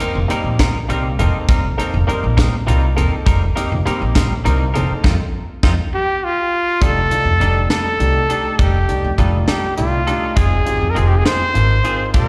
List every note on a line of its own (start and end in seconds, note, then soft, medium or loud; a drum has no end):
0.00 0.20 A#3 medium
0.00 0.20 C4 medium
0.00 0.19 C4 soft
0.00 0.20 D#4 medium
0.00 0.18 D#4 soft
0.00 0.18 A#4 soft
0.00 0.20 A#4 medium
0.00 muted upright bass stroke soft
0.00 closed hi-hat medium
0.15 0.27 F1 medium
0.28 0.48 G3 medium
0.28 0.69 A#3 medium
0.28 0.69 C4 medium
0.28 0.48 C4 medium
0.28 0.69 D#4 medium
0.28 0.48 D#4 medium
0.28 0.69 G4 medium
0.28 0.48 A#4 medium
0.28 muted upright bass stroke soft
0.28 closed hi-hat medium
0.44 0.69 A#1 medium
0.59 0.78 G3 medium
0.59 0.78 C4 medium
0.59 0.78 D#4 medium
0.59 0.77 A#4 medium
0.59 kick medium
0.59 snare loud
0.59 closed hi-hat medium
0.88 1.20 C2 medium
0.88 1.07 G3 medium
0.88 1.09 A#3 medium
0.88 1.09 C4 medium
0.88 1.07 C4 medium
0.88 1.09 D#4 medium
0.88 1.07 D#4 medium
0.88 1.09 G4 medium
0.88 1.07 A#4 medium
0.88 closed hi-hat medium
1.19 1.31 F1 medium
1.19 1.59 A#3 medium
1.19 1.59 C4 medium
1.19 1.37 C4 soft
1.19 1.59 D#4 medium
1.19 1.37 D#4 soft
1.19 1.59 A4 medium
1.19 1.37 A#4 medium
1.19 closed hi-hat medium
1.34 muted upright bass stroke soft
1.49 1.73 F1 medium
1.49 1.66 G3 medium
1.49 1.67 C4 medium
1.49 1.67 D#4 medium
1.49 1.67 A#4 medium
1.49 kick loud
1.49 closed hi-hat medium
1.77 1.98 A#3 medium
1.77 1.98 C4 medium
1.77 1.97 C4 soft
1.77 1.98 D#4 medium
1.77 1.96 D#4 soft
1.77 1.98 A4 medium
1.77 1.96 A#4 medium
1.77 muted upright bass stroke soft
1.77 closed hi-hat medium
1.94 2.06 F1 medium
2.07 2.25 G3 medium
2.07 2.48 A#3 medium
2.07 2.47 C4 medium
2.07 2.26 C4 medium
2.07 2.47 D#4 medium
2.07 2.26 D#4 medium
2.07 2.48 A#4 medium
2.07 2.26 A#4 medium
2.07 muted upright bass stroke soft
2.07 closed hi-hat medium
2.24 2.47 A#1 medium
2.37 2.55 G3 medium
2.37 2.55 C4 medium
2.37 2.55 D#4 medium
2.37 2.55 A#4 medium
2.37 kick medium
2.37 snare loud
2.37 closed hi-hat medium
2.67 2.99 C2 medium
2.67 2.85 G3 medium
2.67 2.87 A#3 medium
2.67 2.87 C4 medium
2.67 2.85 C4 medium
2.67 2.87 D#4 medium
2.67 2.85 D#4 medium
2.67 2.87 F4 medium
2.67 2.85 A#4 medium
2.67 closed hi-hat medium
2.96 3.09 F1 medium
2.96 3.36 A#3 medium
2.96 3.37 C4 medium
2.96 3.15 C4 soft
2.96 3.37 D#4 medium
2.96 3.15 D#4 medium
2.96 3.37 A4 medium
2.96 3.14 A#4 medium
2.96 closed hi-hat medium
3.12 muted upright bass stroke soft
3.26 3.51 F1 medium
3.26 3.44 G3 medium
3.26 3.44 C4 medium
3.26 3.44 D#4 medium
3.26 3.44 A#4 medium
3.26 kick medium
3.26 closed hi-hat medium
3.56 3.76 A#3 medium
3.56 3.76 C4 medium
3.56 3.74 C4 soft
3.56 3.74 D#4 medium
3.56 3.76 D#4 medium
3.56 3.76 G4 medium
3.56 3.73 A#4 medium
3.56 muted upright bass stroke soft
3.56 closed hi-hat medium
3.72 3.83 F1 medium
3.85 4.03 G3 medium
3.85 4.25 A#3 medium
3.85 4.26 C4 medium
3.85 4.03 C4 medium
3.85 4.26 D#4 medium
3.85 4.04 D#4 medium
3.85 4.26 G4 medium
3.85 4.04 A#4 medium
3.85 muted upright bass stroke soft
3.85 closed hi-hat medium
4.02 4.25 A#1 medium
4.15 4.33 G3 medium
4.15 4.33 C4 medium
4.15 4.33 D#4 medium
4.15 4.33 A#4 medium
4.15 kick medium
4.15 snare loud
4.15 closed hi-hat medium
4.44 4.77 C2 medium
4.44 4.62 G3 medium
4.44 4.65 A#3 medium
4.44 4.65 C4 medium
4.44 4.63 C4 medium
4.44 4.65 D#4 medium
4.44 4.63 D#4 medium
4.44 4.65 A#4 medium
4.44 4.63 A#4 medium
4.44 closed hi-hat medium
4.74 4.87 F1 medium
4.74 5.04 A#3 medium
4.74 5.02 C4 medium
4.74 4.92 C4 soft
4.74 4.92 D#4 medium
4.74 5.02 D#4 medium
4.74 5.04 A4 medium
4.74 4.92 A#4 medium
4.74 closed hi-hat medium
4.90 muted upright bass stroke soft
5.04 5.15 F2 medium
5.04 5.13 C4 medium
5.04 5.13 D#4 medium
5.04 5.13 F4 medium
5.04 kick medium
5.04 snare medium
5.63 5.74 F2 medium
5.63 5.73 C4 medium
5.63 5.73 D#4 loud
5.63 5.73 D#4 medium
5.63 5.73 F4 medium
5.63 kick medium
5.63 snare medium
5.94 6.25 G4 medium
6.24 6.85 F4 medium
6.81 7.05 F1 medium
6.81 6.99 G3 medium
6.81 7.05 A3 medium
6.81 7.05 D4 medium
6.81 6.99 D4 medium
6.81 7.05 D#4 medium
6.81 7.00 D#4 medium
6.81 7.05 G4 medium
6.81 7.00 A4 medium
6.81 7.71 A4 loud
6.81 kick medium
6.81 closed hi-hat medium
7.10 7.23 C2 medium
7.10 7.31 A3 medium
7.10 7.31 D4 medium
7.10 7.31 D#4 medium
7.10 7.31 F4 medium
7.10 closed hi-hat medium
7.25 7.37 F2 medium
7.40 7.65 F1 medium
7.40 7.58 G3 soft
7.40 7.80 A3 medium
7.40 7.80 D4 medium
7.40 7.59 D4 soft
7.40 7.80 D#4 medium
7.40 7.59 D#4 medium
7.40 7.80 G4 medium
7.40 7.59 A4 soft
7.40 closed hi-hat medium
7.70 7.88 G3 soft
7.70 7.88 D4 soft
7.70 7.88 D#4 medium
7.70 7.88 A4 medium
7.70 8.61 A4 medium
7.70 snare loud
7.70 closed hi-hat medium
7.99 8.24 C2 medium
7.99 8.20 A3 medium
7.99 8.20 D4 medium
7.99 8.20 D#4 medium
7.99 8.20 G4 medium
7.99 closed hi-hat medium
8.29 8.69 A3 medium
8.29 8.69 D4 soft
8.29 8.48 D4 soft
8.29 8.69 D#4 medium
8.29 8.48 D#4 soft
8.29 8.69 G4 medium
8.29 8.47 A4 soft
8.29 closed hi-hat medium
8.59 8.83 F1 medium
8.59 8.77 G3 medium
8.59 8.77 D4 medium
8.59 8.77 D#4 medium
8.59 9.18 G4 medium
8.59 8.77 A4 medium
8.59 kick medium
8.59 closed hi-hat medium
8.88 9.01 C2 medium
8.88 9.09 A3 medium
8.88 9.09 D4 medium
8.88 9.09 D#4 medium
8.88 9.09 G4 medium
8.88 closed hi-hat medium
9.05 9.16 F2 medium
9.18 9.43 F1 loud
9.18 9.36 G3 medium
9.18 9.58 A3 medium
9.18 9.58 D4 medium
9.18 9.36 D4 soft
9.18 9.58 D#4 medium
9.18 9.36 D#4 soft
9.18 9.58 F4 medium
9.18 9.37 A4 medium
9.18 kick medium
9.18 closed hi-hat medium
9.48 9.66 G3 soft
9.48 9.66 D4 soft
9.48 9.66 D#4 medium
9.48 9.75 G4 medium
9.48 9.66 A4 medium
9.48 snare loud
9.48 closed hi-hat medium
9.77 10.02 C2 medium
9.77 9.98 A3 medium
9.77 9.97 D4 medium
9.77 9.98 D#4 medium
9.77 10.39 F4 medium
9.77 9.98 G4 medium
9.77 closed hi-hat medium
10.07 10.36 A3 medium
10.07 10.36 D4 medium
10.07 10.25 D4 soft
10.07 10.34 D#4 medium
10.07 10.25 D#4 soft
10.07 10.37 G4 medium
10.07 10.25 A4 soft
10.07 closed hi-hat medium
10.36 10.61 F1 medium
10.36 10.54 G#3 medium
10.36 10.60 C4 medium
10.36 10.54 C4 medium
10.36 10.60 D#4 medium
10.36 10.60 F4 medium
10.36 10.54 F4 medium
10.36 10.60 G#4 medium
10.36 10.55 G#4 medium
10.36 10.92 G#4 medium
10.36 kick loud
10.36 closed hi-hat medium
10.65 10.79 G#1 medium
10.65 10.86 C4 medium
10.65 10.86 D#4 medium
10.65 10.86 F4 medium
10.65 10.86 G4 medium
10.65 closed hi-hat medium
10.81 10.93 F2 medium
10.90 11.35 D#4 medium
10.90 11.35 F4 medium
10.90 11.35 G4 medium
10.90 11.00 A#4 medium
10.95 11.20 F1 loud
10.95 11.13 G#3 soft
10.95 11.35 C4 medium
10.95 11.14 C4 medium
10.95 11.14 F4 medium
10.95 11.14 G#4 medium
10.95 closed hi-hat soft
10.99 11.10 G#4 medium
11.08 11.19 G4 medium
11.18 11.26 G#4 medium
11.25 11.44 G#3 soft
11.25 11.43 C4 medium
11.25 11.43 F4 medium
11.25 11.43 G#4 medium
11.25 12.11 C5 loud
11.25 snare loud
11.25 closed hi-hat medium
11.54 11.79 G#1 medium
11.54 11.74 C4 medium
11.54 11.74 D#4 medium
11.54 11.75 F4 medium
11.54 11.75 A#4 medium
11.54 closed hi-hat soft
11.83 12.12 C4 medium
11.83 12.03 C4 soft
11.83 12.14 D#4 medium
11.83 12.13 F4 soft
11.83 12.03 F4 soft
11.83 12.03 G#4 soft
11.83 12.14 A#4 medium
11.83 closed hi-hat medium
12.14 12.28 A#1 medium
12.14 12.28 F3 medium
12.14 12.28 C4 medium
12.14 12.28 D4 medium
12.14 12.28 F4 medium
12.14 12.28 G4 medium
12.14 12.28 A#4 medium
12.14 kick loud
12.14 closed hi-hat medium